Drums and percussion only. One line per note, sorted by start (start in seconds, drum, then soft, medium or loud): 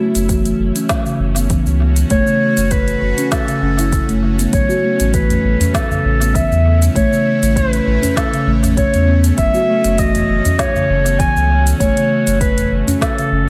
0.15 closed hi-hat soft
0.15 shaker medium
0.29 kick loud
0.29 closed hi-hat medium
0.29 shaker medium
0.45 closed hi-hat soft
0.45 shaker soft
0.76 closed hi-hat soft
0.76 shaker medium
0.89 kick loud
0.89 snare medium
0.89 closed hi-hat medium
0.89 shaker medium
1.06 shaker soft
1.36 closed hi-hat soft
1.36 shaker medium
1.50 kick loud
1.50 closed hi-hat medium
1.50 shaker medium
1.66 shaker soft
1.96 closed hi-hat soft
1.96 shaker medium
2.10 kick loud
2.10 closed hi-hat medium
2.10 shaker medium
2.27 shaker soft
2.57 closed hi-hat soft
2.57 shaker medium
2.71 kick loud
2.71 closed hi-hat medium
2.71 shaker medium
2.88 closed hi-hat soft
2.88 shaker soft
3.18 closed hi-hat soft
3.18 shaker medium
3.32 kick loud
3.32 snare medium
3.32 closed hi-hat medium
3.32 shaker medium
3.48 closed hi-hat soft
3.48 shaker soft
3.79 closed hi-hat soft
3.79 shaker medium
3.92 kick loud
3.92 closed hi-hat medium
3.92 shaker medium
4.09 closed hi-hat soft
4.09 shaker soft
4.39 closed hi-hat soft
4.39 shaker medium
4.53 kick loud
4.53 closed hi-hat medium
4.53 shaker medium
4.70 shaker soft
5.00 closed hi-hat soft
5.00 shaker medium
5.14 kick loud
5.14 closed hi-hat medium
5.14 shaker medium
5.30 closed hi-hat soft
5.30 udu medium
5.30 shaker soft
5.60 closed hi-hat soft
5.60 udu medium
5.60 shaker medium
5.74 kick loud
5.74 snare medium
5.74 closed hi-hat medium
5.74 shaker medium
5.91 udu medium
5.91 shaker soft
6.22 closed hi-hat soft
6.22 shaker medium
6.35 kick loud
6.35 closed hi-hat medium
6.35 shaker medium
6.52 shaker soft
6.82 closed hi-hat soft
6.82 shaker medium
6.96 kick loud
6.96 closed hi-hat medium
6.96 shaker soft
7.13 shaker soft
7.43 closed hi-hat soft
7.43 shaker medium
7.56 kick loud
7.56 closed hi-hat medium
7.56 shaker medium
7.73 closed hi-hat soft
7.73 shaker soft
8.03 closed hi-hat soft
8.03 udu medium
8.03 shaker medium
8.17 kick loud
8.17 snare medium
8.17 closed hi-hat medium
8.17 shaker medium
8.33 closed hi-hat soft
8.33 shaker soft
8.64 closed hi-hat soft
8.64 udu medium
8.64 shaker medium
8.77 kick loud
8.77 closed hi-hat medium
8.77 shaker soft
8.94 closed hi-hat soft
8.94 shaker soft
9.24 closed hi-hat soft
9.24 shaker medium
9.38 kick loud
9.38 closed hi-hat medium
9.38 shaker medium
9.54 shaker soft
9.84 closed hi-hat soft
9.84 shaker medium
9.98 kick loud
9.98 closed hi-hat medium
9.98 shaker medium
10.15 closed hi-hat soft
10.15 udu medium
10.15 shaker soft
10.45 closed hi-hat soft
10.45 udu medium
10.45 shaker medium
10.59 kick loud
10.59 snare medium
10.59 closed hi-hat medium
10.59 shaker medium
10.75 udu medium
10.75 shaker soft
11.06 closed hi-hat soft
11.06 shaker medium
11.20 kick loud
11.20 closed hi-hat medium
11.20 shaker soft
11.37 shaker soft
11.67 closed hi-hat soft
11.67 shaker medium
11.80 kick loud
11.80 closed hi-hat medium
11.80 shaker medium
11.97 closed hi-hat soft
11.97 shaker soft
12.27 closed hi-hat soft
12.27 shaker medium
12.41 kick loud
12.41 closed hi-hat medium
12.41 shaker medium
12.57 closed hi-hat soft
12.57 udu medium
12.57 shaker soft
12.88 closed hi-hat soft
12.88 udu medium
12.88 shaker medium
13.01 kick loud
13.01 snare medium
13.01 closed hi-hat medium
13.01 shaker medium
13.18 closed hi-hat soft
13.18 shaker soft